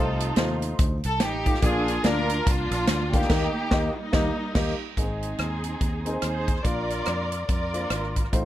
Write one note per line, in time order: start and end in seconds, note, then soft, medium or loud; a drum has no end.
0.00 0.31 C2 loud
0.00 0.58 C3 medium
0.00 0.25 A3 medium
0.00 0.26 D#4 medium
0.00 0.75 D#4 medium
0.00 0.26 F4 medium
0.00 0.75 F4 medium
0.00 0.36 A4 medium
0.00 0.26 C5 medium
0.20 closed hi-hat medium
0.36 0.72 D#2 medium
0.36 0.94 A3 medium
0.36 0.94 D#4 medium
0.36 0.95 F4 medium
0.36 0.95 C5 medium
0.36 snare loud
0.36 closed hi-hat medium
0.62 closed hi-hat medium
0.79 1.01 D2 medium
0.79 kick loud
0.79 closed hi-hat loud
1.04 1.21 C2 loud
1.04 1.20 A4 medium
1.04 closed hi-hat medium
1.20 1.56 A1 medium
1.20 1.60 D#4 medium
1.20 1.63 G4 loud
1.20 snare loud
1.20 closed hi-hat loud
1.46 1.57 A3 medium
1.46 1.57 D#4 medium
1.46 1.57 F4 medium
1.46 1.57 G4 medium
1.46 kick medium
1.46 closed hi-hat medium
1.54 snare soft
1.62 1.98 A#1 loud
1.62 2.26 A#2 medium
1.62 1.93 A#3 medium
1.62 1.93 D4 medium
1.62 2.04 D4 medium
1.62 1.93 F4 medium
1.62 2.04 F4 medium
1.62 2.05 G#4 medium
1.62 1.94 D5 medium
1.62 kick loud
1.62 closed hi-hat medium
1.88 closed hi-hat medium
2.04 2.40 D2 loud
2.04 2.62 A#3 medium
2.04 2.62 D4 medium
2.04 2.46 D4 medium
2.04 2.62 F4 medium
2.04 2.46 F4 medium
2.04 2.46 A#4 loud
2.04 2.62 D5 medium
2.04 snare loud
2.04 closed hi-hat medium
2.30 closed hi-hat medium
2.46 2.68 C2 medium
2.46 3.12 A#3 medium
2.46 3.26 D4 medium
2.46 3.14 F4 loud
2.46 kick loud
2.46 closed hi-hat loud
2.71 2.85 A#1 medium
2.71 closed hi-hat medium
2.87 3.23 D2 loud
2.87 snare loud
2.87 closed hi-hat loud
3.13 3.24 A#3 medium
3.13 3.93 A#3 medium
3.13 3.24 D4 medium
3.13 3.93 D#4 medium
3.13 3.25 F4 medium
3.13 3.97 G4 loud
3.13 3.25 F5 medium
3.13 kick medium
3.13 closed hi-hat medium
3.22 snare soft
3.30 3.47 D#2 loud
3.30 3.47 D#3 loud
3.30 3.47 A#3 loud
3.30 3.47 D#4 loud
3.30 3.48 G4 loud
3.30 3.48 D#5 loud
3.30 kick loud
3.30 snare loud
3.30 crash medium
3.71 3.89 D#2 loud
3.71 3.89 A#3 loud
3.71 3.89 D#4 loud
3.71 3.89 G4 loud
3.71 3.90 D#5 medium
3.71 kick loud
3.71 snare loud
3.97 4.77 G3 medium
3.97 4.77 A#3 medium
3.97 4.81 D#4 medium
4.12 4.30 D#2 loud
4.12 4.30 A#3 loud
4.12 4.30 D#4 loud
4.12 4.31 G4 medium
4.12 4.31 D#5 medium
4.12 kick loud
4.12 snare loud
4.55 4.72 D#2 medium
4.55 4.72 A#3 loud
4.55 4.73 D#4 loud
4.55 4.73 G4 loud
4.55 kick loud
4.55 snare loud
4.55 crash medium
4.97 5.32 G#1 medium
4.97 5.61 G#2 medium
4.97 5.03 A#3 medium
4.97 6.19 C4 soft
4.97 6.19 D#4 medium
4.97 5.55 D#4 medium
4.97 5.55 G#4 medium
4.97 6.20 G#4 medium
4.97 5.55 D#5 medium
4.97 kick medium
4.97 closed hi-hat medium
5.02 5.57 C4 medium
5.22 closed hi-hat medium
5.38 5.74 D#2 medium
5.38 cross-stick medium
5.38 closed hi-hat medium
5.64 closed hi-hat medium
5.81 6.17 D#2 medium
5.81 kick medium
5.81 closed hi-hat medium
6.05 6.47 C4 medium
6.05 6.48 D#4 medium
6.05 6.48 G#4 medium
6.05 6.11 A#4 medium
6.05 closed hi-hat medium
6.13 6.51 C5 medium
6.22 6.58 D#2 medium
6.22 6.62 D#4 medium
6.22 6.62 G#4 medium
6.22 6.65 C5 medium
6.22 cross-stick medium
6.22 closed hi-hat medium
6.48 kick medium
6.48 closed hi-hat medium
6.56 cross-stick soft
6.64 7.01 A#1 medium
6.64 7.29 A#2 medium
6.64 7.22 A#3 medium
6.64 7.23 D4 medium
6.64 7.45 F4 medium
6.64 7.23 F4 medium
6.64 7.45 A#4 medium
6.64 7.47 D5 medium
6.64 7.24 D5 medium
6.64 kick medium
6.64 closed hi-hat medium
6.90 closed hi-hat medium
7.06 7.43 F2 medium
7.06 cross-stick medium
7.06 closed hi-hat medium
7.32 closed hi-hat medium
7.48 7.85 F2 medium
7.48 8.29 F4 medium
7.48 8.29 A#4 medium
7.48 8.12 D5 medium
7.48 kick loud
7.48 closed hi-hat medium
7.74 8.15 A#3 medium
7.74 8.16 D4 medium
7.74 8.16 F4 medium
7.74 7.79 C5 medium
7.74 closed hi-hat medium
7.80 8.19 D5 medium
7.90 8.27 G#1 medium
7.90 cross-stick medium
7.90 closed hi-hat medium
8.03 cross-stick soft
8.16 kick medium
8.16 closed hi-hat medium
8.25 cross-stick soft
8.32 8.45 A1 medium
8.32 8.45 A2 medium
8.32 8.45 A3 medium
8.32 8.45 D#4 medium
8.32 8.45 F4 medium
8.32 8.45 C5 medium
8.32 kick medium
8.32 closed hi-hat medium